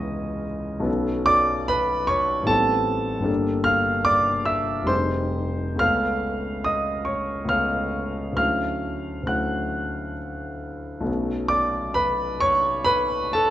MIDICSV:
0, 0, Header, 1, 2, 480
1, 0, Start_track
1, 0, Tempo, 805369
1, 521, Time_signature, 3, 2, 24, 8
1, 2918, Tempo, 923077
1, 3398, Tempo, 857143
1, 4838, Tempo, 894188
1, 6758, Tempo, 921659
1, 7557, End_track
2, 0, Start_track
2, 0, Title_t, "Grand piano"
2, 0, Program_c, 0, 0
2, 0, Control_c, 0, 64, 127
2, 0, Note_on_c, 0, 37, 54
2, 0, Note_on_c, 0, 52, 51
2, 0, Note_on_c, 0, 59, 50
2, 0, Note_on_c, 0, 63, 50
2, 0, Note_on_c, 0, 68, 44
2, 0, Note_on_c, 0, 73, 80
2, 0, Note_on_c, 0, 75, 81
2, 0, Note_on_c, 0, 85, 98
2, 0, Note_on_c, 0, 87, 105
2, 249, Note_off_c, 0, 75, 0
2, 267, Note_off_c, 0, 87, 0
2, 475, Note_on_c, 0, 35, 59
2, 479, Note_off_c, 0, 37, 0
2, 479, Note_on_c, 0, 54, 52
2, 481, Note_off_c, 0, 52, 0
2, 482, Note_off_c, 0, 59, 0
2, 489, Note_off_c, 0, 63, 0
2, 491, Note_on_c, 0, 59, 52
2, 493, Note_off_c, 0, 68, 0
2, 502, Note_on_c, 0, 61, 49
2, 506, Note_on_c, 0, 69, 51
2, 531, Control_c, 0, 64, 0
2, 536, Note_off_c, 0, 73, 0
2, 537, Note_off_c, 0, 85, 0
2, 624, Control_c, 0, 64, 127
2, 749, Note_on_c, 0, 86, 107
2, 756, Note_on_c, 0, 74, 78
2, 989, Note_off_c, 0, 74, 0
2, 1003, Note_off_c, 0, 86, 0
2, 1003, Note_on_c, 0, 83, 102
2, 1010, Note_on_c, 0, 71, 82
2, 1235, Note_on_c, 0, 85, 105
2, 1236, Note_off_c, 0, 71, 0
2, 1246, Note_on_c, 0, 73, 77
2, 1250, Note_off_c, 0, 83, 0
2, 1446, Note_off_c, 0, 35, 0
2, 1448, Note_off_c, 0, 54, 0
2, 1449, Note_on_c, 0, 33, 62
2, 1454, Note_off_c, 0, 59, 0
2, 1456, Note_on_c, 0, 55, 50
2, 1460, Note_off_c, 0, 61, 0
2, 1462, Note_off_c, 0, 69, 0
2, 1463, Note_on_c, 0, 59, 49
2, 1471, Note_on_c, 0, 81, 100
2, 1472, Note_off_c, 0, 73, 0
2, 1474, Note_on_c, 0, 60, 52
2, 1476, Note_on_c, 0, 69, 68
2, 1484, Note_off_c, 0, 85, 0
2, 1505, Control_c, 0, 64, 0
2, 1597, Control_c, 0, 64, 127
2, 1906, Note_on_c, 0, 31, 57
2, 1909, Note_off_c, 0, 55, 0
2, 1918, Note_on_c, 0, 55, 46
2, 1923, Note_off_c, 0, 33, 0
2, 1927, Note_off_c, 0, 69, 0
2, 1927, Note_on_c, 0, 58, 48
2, 1930, Note_off_c, 0, 59, 0
2, 1934, Note_on_c, 0, 62, 49
2, 1936, Note_off_c, 0, 60, 0
2, 1940, Note_on_c, 0, 69, 52
2, 1949, Note_off_c, 0, 81, 0
2, 1969, Control_c, 0, 64, 0
2, 2057, Control_c, 0, 64, 127
2, 2169, Note_on_c, 0, 89, 106
2, 2179, Note_on_c, 0, 77, 78
2, 2410, Note_off_c, 0, 77, 0
2, 2412, Note_on_c, 0, 86, 105
2, 2421, Note_on_c, 0, 74, 76
2, 2423, Note_off_c, 0, 89, 0
2, 2651, Note_off_c, 0, 74, 0
2, 2655, Note_on_c, 0, 88, 90
2, 2658, Note_on_c, 0, 76, 75
2, 2664, Note_off_c, 0, 86, 0
2, 2869, Note_off_c, 0, 31, 0
2, 2874, Note_off_c, 0, 55, 0
2, 2879, Note_off_c, 0, 58, 0
2, 2881, Note_on_c, 0, 29, 59
2, 2883, Note_off_c, 0, 62, 0
2, 2886, Note_off_c, 0, 69, 0
2, 2888, Note_on_c, 0, 55, 48
2, 2892, Note_on_c, 0, 60, 47
2, 2893, Note_off_c, 0, 76, 0
2, 2900, Note_on_c, 0, 63, 43
2, 2902, Note_on_c, 0, 84, 93
2, 2905, Note_on_c, 0, 68, 45
2, 2908, Note_on_c, 0, 72, 72
2, 2909, Note_off_c, 0, 88, 0
2, 2929, Control_c, 0, 64, 0
2, 3015, Control_c, 0, 64, 127
2, 3366, Note_on_c, 0, 37, 50
2, 3367, Note_off_c, 0, 29, 0
2, 3370, Note_off_c, 0, 55, 0
2, 3370, Note_on_c, 0, 57, 46
2, 3372, Note_off_c, 0, 60, 0
2, 3373, Note_off_c, 0, 72, 0
2, 3376, Note_off_c, 0, 63, 0
2, 3378, Note_off_c, 0, 68, 0
2, 3380, Note_on_c, 0, 59, 47
2, 3384, Note_on_c, 0, 61, 43
2, 3384, Note_on_c, 0, 89, 104
2, 3389, Note_on_c, 0, 69, 47
2, 3389, Note_on_c, 0, 77, 82
2, 3391, Note_off_c, 0, 84, 0
2, 3411, Control_c, 0, 64, 0
2, 3509, Control_c, 0, 64, 127
2, 3845, Note_off_c, 0, 77, 0
2, 3860, Note_on_c, 0, 87, 91
2, 3864, Note_off_c, 0, 89, 0
2, 3869, Note_on_c, 0, 75, 68
2, 4087, Note_on_c, 0, 85, 79
2, 4089, Note_off_c, 0, 75, 0
2, 4094, Note_on_c, 0, 73, 58
2, 4101, Note_off_c, 0, 87, 0
2, 4302, Note_off_c, 0, 37, 0
2, 4309, Note_off_c, 0, 57, 0
2, 4311, Note_on_c, 0, 37, 51
2, 4314, Note_off_c, 0, 59, 0
2, 4316, Note_off_c, 0, 61, 0
2, 4319, Note_off_c, 0, 69, 0
2, 4321, Note_on_c, 0, 57, 39
2, 4323, Note_off_c, 0, 73, 0
2, 4324, Note_on_c, 0, 59, 39
2, 4333, Note_on_c, 0, 61, 43
2, 4333, Note_on_c, 0, 89, 96
2, 4336, Note_on_c, 0, 69, 44
2, 4337, Note_off_c, 0, 85, 0
2, 4339, Note_on_c, 0, 77, 71
2, 4801, Note_on_c, 0, 38, 48
2, 4805, Note_off_c, 0, 37, 0
2, 4809, Note_off_c, 0, 57, 0
2, 4809, Note_on_c, 0, 54, 38
2, 4812, Note_off_c, 0, 59, 0
2, 4812, Note_off_c, 0, 77, 0
2, 4814, Note_off_c, 0, 61, 0
2, 4816, Note_off_c, 0, 89, 0
2, 4817, Note_on_c, 0, 57, 41
2, 4818, Note_off_c, 0, 69, 0
2, 4823, Note_on_c, 0, 61, 41
2, 4825, Note_on_c, 0, 89, 94
2, 4831, Note_on_c, 0, 64, 42
2, 4832, Note_on_c, 0, 77, 73
2, 4848, Control_c, 0, 64, 0
2, 4943, Control_c, 0, 64, 127
2, 5280, Note_off_c, 0, 38, 0
2, 5287, Note_off_c, 0, 54, 0
2, 5288, Note_on_c, 0, 38, 46
2, 5295, Note_off_c, 0, 57, 0
2, 5295, Note_off_c, 0, 77, 0
2, 5296, Note_on_c, 0, 54, 37
2, 5297, Note_off_c, 0, 61, 0
2, 5301, Note_off_c, 0, 64, 0
2, 5303, Note_on_c, 0, 57, 41
2, 5309, Note_on_c, 0, 61, 38
2, 5311, Note_on_c, 0, 90, 72
2, 5313, Note_off_c, 0, 89, 0
2, 5316, Note_on_c, 0, 64, 37
2, 5318, Note_on_c, 0, 78, 55
2, 5773, Note_off_c, 0, 78, 0
2, 5791, Note_off_c, 0, 90, 0
2, 6239, Note_off_c, 0, 38, 0
2, 6241, Note_off_c, 0, 54, 0
2, 6242, Note_on_c, 0, 35, 53
2, 6247, Note_off_c, 0, 57, 0
2, 6249, Note_on_c, 0, 54, 42
2, 6250, Note_off_c, 0, 61, 0
2, 6253, Note_off_c, 0, 64, 0
2, 6255, Note_on_c, 0, 57, 42
2, 6263, Note_on_c, 0, 59, 43
2, 6268, Note_on_c, 0, 61, 42
2, 6288, Control_c, 0, 64, 0
2, 6391, Control_c, 0, 64, 127
2, 6499, Note_on_c, 0, 86, 97
2, 6507, Note_on_c, 0, 74, 76
2, 6737, Note_off_c, 0, 74, 0
2, 6745, Note_on_c, 0, 83, 97
2, 6750, Note_off_c, 0, 86, 0
2, 6751, Note_on_c, 0, 71, 78
2, 6975, Note_off_c, 0, 71, 0
2, 6986, Note_on_c, 0, 85, 111
2, 6989, Note_off_c, 0, 83, 0
2, 6990, Note_on_c, 0, 73, 86
2, 7215, Note_on_c, 0, 83, 119
2, 7216, Note_off_c, 0, 73, 0
2, 7223, Note_on_c, 0, 71, 93
2, 7231, Note_off_c, 0, 85, 0
2, 7455, Note_off_c, 0, 71, 0
2, 7468, Note_off_c, 0, 83, 0
2, 7468, Note_on_c, 0, 81, 100
2, 7478, Note_on_c, 0, 69, 79
2, 7557, Note_off_c, 0, 35, 0
2, 7557, Note_off_c, 0, 54, 0
2, 7557, Note_off_c, 0, 57, 0
2, 7557, Note_off_c, 0, 59, 0
2, 7557, Note_off_c, 0, 61, 0
2, 7557, Note_off_c, 0, 69, 0
2, 7557, Note_off_c, 0, 81, 0
2, 7557, End_track
0, 0, End_of_file